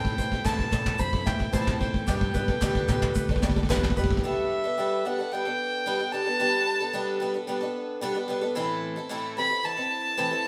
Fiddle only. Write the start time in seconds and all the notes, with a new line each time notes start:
Already playing: G5
0.45 A5
0.99 B5
1.27 G5
1.53 A5
1.80 G5
4.25 E5
5.06 F#5
5.32 G5
6.12 A5
9.38 B5
9.65 A5